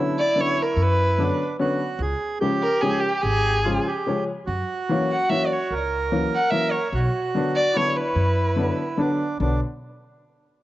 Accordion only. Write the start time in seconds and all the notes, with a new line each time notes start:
Already playing: E4
1.19 D4
1.60 F#4
2.01 G#4
2.41 G4
3.64 F4
3.86 G4
4.47 F#4
5.71 A#4
6.95 F#4
7.74 E4
9.00 D4
9.41 D4